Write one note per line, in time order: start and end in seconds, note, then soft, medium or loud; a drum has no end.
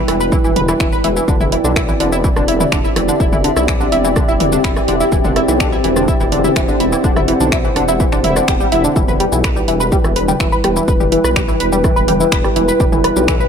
0.00 1.24 G3 medium
0.00 1.24 E4 medium
0.00 2.74 E4 medium
0.00 1.24 B4 medium
0.00 2.95 B4 medium
0.00 2.57 G5 medium
0.08 0.37 E1 medium
0.08 0.15 E3 medium
0.08 0.15 E4 medium
0.08 cross-stick medium
0.08 open hi-hat loud
0.20 0.25 B4 medium
0.20 0.25 B5 medium
0.20 shaker medium
0.32 0.37 E3 loud
0.32 0.37 E4 medium
0.32 kick loud
0.32 shaker medium
0.44 0.73 E1 medium
0.44 0.51 E3 medium
0.44 0.51 E4 medium
0.44 shaker soft
0.56 0.61 B4 medium
0.56 0.61 B5 medium
0.56 open hi-hat loud
0.56 mid tom loud
0.68 0.73 E3 loud
0.68 0.73 E4 medium
0.68 cross-stick medium
0.68 shaker medium
0.80 0.95 E1 medium
0.80 0.87 E3 medium
0.80 0.87 E4 medium
0.80 finger snap loud
0.80 kick loud
0.80 shaker medium
0.92 0.97 B4 medium
0.92 0.97 B5 medium
0.92 shaker soft
1.04 1.19 E1 medium
1.04 1.08 E3 loud
1.04 1.08 E4 medium
1.04 open hi-hat loud
1.16 1.23 E3 medium
1.16 1.23 E4 medium
1.16 shaker medium
1.28 1.57 E1 loud
1.28 1.35 D3 medium
1.28 8.92 C4 medium
1.28 8.96 C4 medium
1.28 1.35 D4 medium
1.28 8.92 E4 medium
1.28 5.08 D5 medium
1.28 kick loud
1.28 shaker medium
1.40 1.45 E4 medium
1.40 1.45 E5 medium
1.40 mid tom medium
1.40 shaker soft
1.52 1.57 E3 medium
1.52 1.57 E4 medium
1.52 10.81 D5 medium
1.52 open hi-hat loud
1.60 9.87 G4 medium
1.64 1.93 B1 loud
1.64 1.71 D3 medium
1.64 1.71 D4 medium
1.64 shaker medium
1.76 1.81 E4 medium
1.76 1.81 E5 medium
1.76 finger snap loud
1.76 kick loud
1.76 cross-stick medium
1.76 shaker medium
1.86 1.93 E3 medium
1.86 1.93 E4 medium
1.86 6.19 E5 medium
1.86 shaker soft
2.00 2.29 E1 medium
2.00 2.07 D3 medium
2.00 2.07 D4 medium
2.00 open hi-hat loud
2.12 2.17 E4 medium
2.12 2.17 E5 medium
2.12 shaker medium
2.24 2.29 E3 medium
2.24 2.29 E4 medium
2.24 kick loud
2.24 shaker medium
2.36 2.65 E1 medium
2.36 2.43 D3 medium
2.36 2.43 D4 medium
2.36 cross-stick medium
2.36 shaker soft
2.48 2.53 E4 medium
2.48 2.53 E5 medium
2.48 open hi-hat loud
2.60 2.65 E3 medium
2.60 2.65 E4 medium
2.60 mid tom medium
2.60 shaker medium
2.72 2.87 E1 medium
2.72 2.79 D3 medium
2.72 2.79 D4 medium
2.72 finger snap loud
2.72 kick loud
2.72 shaker medium
2.84 2.89 E4 medium
2.84 2.89 E5 medium
2.84 shaker soft
2.96 3.11 E1 medium
2.96 3.00 E3 medium
2.96 3.00 E4 medium
2.96 cross-stick medium
2.96 open hi-hat loud
3.08 3.15 D3 medium
3.08 3.15 D4 medium
3.08 shaker medium
3.20 3.49 E1 loud
3.20 3.24 E4 medium
3.20 3.24 E5 medium
3.20 kick loud
3.20 shaker medium
3.32 3.37 E3 medium
3.32 3.37 E4 medium
3.32 mid tom medium
3.32 shaker soft
3.44 3.51 D3 medium
3.44 3.51 D4 medium
3.44 open hi-hat loud
3.56 3.85 B1 loud
3.56 3.61 E4 medium
3.56 3.61 E5 medium
3.56 cross-stick medium
3.56 shaker medium
3.68 3.73 E3 medium
3.68 3.72 E4 medium
3.68 finger snap loud
3.68 kick loud
3.68 shaker medium
3.80 3.87 D3 medium
3.80 3.87 D4 medium
3.80 shaker soft
3.92 4.21 E1 medium
3.92 3.97 E4 medium
3.92 3.97 E5 medium
3.92 open hi-hat loud
4.04 4.09 E3 medium
4.04 4.09 E4 medium
4.04 shaker medium
4.16 4.23 D3 medium
4.16 4.23 D4 medium
4.16 kick loud
4.16 cross-stick medium
4.16 shaker medium
4.28 4.57 E1 loud
4.28 4.33 E4 medium
4.28 4.33 E5 medium
4.28 shaker soft
4.40 4.45 E3 medium
4.40 4.44 E4 medium
4.40 open hi-hat loud
4.40 mid tom loud
4.52 4.59 D3 medium
4.52 4.59 D4 medium
4.52 shaker medium
4.64 4.79 E1 medium
4.64 4.69 E4 medium
4.64 4.69 E5 medium
4.64 finger snap loud
4.64 kick loud
4.64 shaker medium
4.76 4.81 E3 medium
4.76 4.81 E4 medium
4.76 cross-stick medium
4.76 shaker soft
4.88 5.03 E1 medium
4.88 4.95 D3 medium
4.88 4.95 D4 medium
4.88 open hi-hat loud
5.00 5.05 E4 medium
5.00 5.05 E5 medium
5.00 shaker medium
5.12 5.41 E1 loud
5.12 5.16 E3 medium
5.12 5.16 E4 medium
5.12 8.92 C5 medium
5.12 kick loud
5.12 shaker medium
5.24 5.31 D3 medium
5.24 5.31 D4 medium
5.24 mid tom medium
5.24 shaker soft
5.36 5.41 E4 medium
5.36 5.40 E5 medium
5.36 cross-stick medium
5.36 open hi-hat loud
5.48 5.77 B1 loud
5.48 5.53 E3 medium
5.48 5.53 E4 medium
5.48 shaker medium
5.60 5.67 D3 medium
5.60 5.67 D4 medium
5.60 finger snap loud
5.60 kick loud
5.60 shaker medium
5.72 5.77 E4 medium
5.72 5.77 E5 medium
5.72 shaker soft
5.84 6.13 E1 medium
5.84 5.88 E3 medium
5.84 5.88 E4 medium
5.84 open hi-hat loud
5.96 6.03 D3 medium
5.96 6.03 D4 medium
5.96 cross-stick medium
5.96 shaker medium
6.04 8.96 F#5 medium
6.08 6.12 E4 medium
6.08 6.12 E5 medium
6.08 kick loud
6.08 shaker medium
6.20 6.49 E1 loud
6.20 6.25 E3 medium
6.20 6.25 E4 medium
6.20 shaker soft
6.32 6.39 D3 medium
6.32 6.39 D4 medium
6.32 open hi-hat loud
6.44 6.49 E4 medium
6.44 6.49 E5 medium
6.44 mid tom medium
6.44 shaker medium
6.56 6.71 E1 medium
6.56 6.60 E3 medium
6.56 6.60 E4 medium
6.56 finger snap loud
6.56 kick loud
6.56 cross-stick medium
6.56 shaker medium
6.68 6.75 D3 medium
6.68 6.75 D4 medium
6.68 shaker soft
6.80 6.95 E1 loud
6.80 6.84 E4 medium
6.80 6.84 E5 medium
6.80 open hi-hat loud
6.92 6.96 E3 medium
6.92 6.97 E4 medium
6.92 shaker medium
7.04 7.33 E1 loud
7.04 7.11 D3 medium
7.04 7.11 D4 medium
7.04 kick loud
7.04 shaker medium
7.16 7.21 E4 medium
7.16 7.21 E5 medium
7.16 cross-stick medium
7.16 mid tom medium
7.16 shaker soft
7.28 7.32 E3 medium
7.28 7.32 E4 medium
7.28 open hi-hat loud
7.40 7.69 B1 loud
7.40 7.47 D3 medium
7.40 7.47 D4 medium
7.40 shaker medium
7.52 7.56 E4 medium
7.52 7.56 E5 medium
7.52 finger snap loud
7.52 kick loud
7.52 shaker medium
7.64 7.69 E3 medium
7.64 7.69 E4 medium
7.64 shaker soft
7.76 8.05 E1 medium
7.76 7.83 D3 medium
7.76 7.83 D4 medium
7.76 cross-stick soft
7.76 open hi-hat loud
7.88 7.93 E4 medium
7.88 7.93 E5 medium
7.88 shaker medium
8.00 8.04 E3 medium
8.00 8.04 E4 medium
8.00 kick loud
8.00 shaker medium
8.12 8.41 E1 loud
8.12 8.19 D3 medium
8.12 8.19 D4 medium
8.12 finger snap soft
8.12 shaker soft
8.24 8.35 E4 medium
8.24 8.35 E5 medium
8.24 open hi-hat loud
8.24 mid tom medium
8.36 8.43 D3 medium
8.36 8.43 D4 medium
8.36 cross-stick soft
8.36 shaker medium
8.48 8.63 E1 medium
8.48 8.52 G3 medium
8.48 8.52 G4 medium
8.48 finger snap loud
8.48 kick loud
8.48 shaker medium
8.60 8.67 G3 medium
8.60 8.67 G4 medium
8.60 shaker soft
8.72 8.87 E1 loud
8.72 8.83 E4 medium
8.72 8.83 E5 medium
8.72 open hi-hat loud
8.84 8.95 D3 medium
8.84 8.95 D4 medium
8.84 shaker medium
8.96 9.25 E1 loud
8.96 9.03 E3 medium
8.96 13.48 G3 medium
8.96 9.03 E4 medium
8.96 13.48 E4 medium
8.96 13.48 B4 medium
8.96 kick loud
8.96 shaker medium
9.08 9.12 B4 medium
9.08 9.12 B5 medium
9.08 mid tom medium
9.08 shaker soft
9.20 9.24 G3 medium
9.20 9.24 G4 medium
9.20 13.48 B4 medium
9.20 open hi-hat loud
9.32 9.61 B1 loud
9.32 9.39 E3 medium
9.32 9.39 E4 medium
9.32 shaker medium
9.44 9.48 B4 medium
9.44 9.48 B5 medium
9.44 finger snap loud
9.44 kick loud
9.44 cross-stick medium
9.44 shaker medium
9.56 9.61 G3 medium
9.56 9.61 G4 medium
9.56 shaker soft
9.68 9.97 E1 medium
9.68 9.75 E3 medium
9.68 9.75 E4 medium
9.68 open hi-hat loud
9.80 9.84 B4 medium
9.80 9.84 B5 medium
9.80 shaker medium
9.92 9.96 G3 medium
9.92 9.96 G4 medium
9.92 kick loud
9.92 shaker medium
10.04 10.33 E1 loud
10.04 10.11 E3 medium
10.04 10.11 E4 medium
10.04 cross-stick medium
10.04 shaker soft
10.16 10.20 B4 medium
10.16 10.20 B5 medium
10.16 open hi-hat loud
10.28 10.33 G3 medium
10.28 10.33 G4 medium
10.28 mid tom medium
10.28 shaker medium
10.33 13.40 G5 medium
10.40 10.55 E1 medium
10.40 10.47 E3 medium
10.40 10.47 E4 medium
10.40 finger snap loud
10.40 kick loud
10.40 shaker medium
10.52 10.57 B4 medium
10.52 10.57 B5 medium
10.52 shaker soft
10.64 10.79 E1 loud
10.64 10.68 G3 medium
10.64 10.68 G4 medium
10.64 cross-stick medium
10.64 open hi-hat loud
10.76 10.83 E3 medium
10.76 10.83 E4 medium
10.76 shaker medium
10.88 11.17 E1 loud
10.88 10.92 B4 medium
10.88 10.92 B5 medium
10.88 kick loud
10.88 shaker medium
11.00 11.04 G3 medium
11.00 11.04 G4 medium
11.00 mid tom medium
11.00 shaker soft
11.12 11.19 E3 medium
11.12 11.19 E4 medium
11.12 open hi-hat loud
11.24 11.53 B1 loud
11.24 11.29 B4 medium
11.24 11.29 B5 medium
11.24 cross-stick medium
11.24 shaker medium
11.36 11.40 G3 medium
11.36 11.40 G4 medium
11.36 finger snap loud
11.36 kick loud
11.36 shaker medium
11.48 11.55 E3 medium
11.48 11.55 E4 medium
11.48 shaker soft
11.60 11.89 E1 medium
11.60 11.64 B4 medium
11.60 11.64 B5 medium
11.60 open hi-hat loud
11.72 11.76 G3 medium
11.72 11.77 G4 medium
11.72 shaker medium
11.84 11.91 E3 medium
11.84 11.91 E4 medium
11.84 kick loud
11.84 cross-stick medium
11.84 shaker medium
11.96 12.25 E1 medium
11.96 12.00 B4 medium
11.96 12.00 B5 medium
11.96 shaker soft
12.08 12.12 G3 medium
12.08 12.12 G4 medium
12.08 open hi-hat loud
12.08 mid tom medium
12.20 12.27 E3 medium
12.20 12.27 E4 medium
12.20 shaker medium
12.32 12.47 E1 medium
12.32 12.36 B4 medium
12.32 12.36 B5 medium
12.32 finger snap loud
12.32 kick loud
12.32 shaker medium
12.44 12.49 G3 medium
12.44 12.49 G4 medium
12.44 cross-stick medium
12.44 shaker soft
12.56 12.71 E1 medium
12.56 12.63 E3 medium
12.56 12.63 E4 medium
12.56 open hi-hat loud
12.68 12.73 B4 medium
12.68 12.73 B5 medium
12.68 shaker medium
12.80 13.09 E1 loud
12.80 12.84 G3 medium
12.80 12.84 G4 medium
12.80 kick loud
12.80 shaker medium
12.92 12.99 E3 medium
12.92 12.99 E4 medium
12.92 mid tom medium
12.92 shaker soft
13.04 13.08 B4 medium
13.04 13.08 B5 medium
13.04 cross-stick medium
13.04 open hi-hat loud
13.16 13.45 B1 loud
13.16 13.21 G3 medium
13.16 13.21 G4 medium
13.16 shaker medium
13.25 13.35 E3 medium
13.25 13.35 E4 medium
13.25 13.48 F#5 medium
13.25 finger snap loud
13.25 kick loud
13.25 shaker medium
13.40 13.45 B4 medium
13.40 13.45 B5 medium
13.40 shaker soft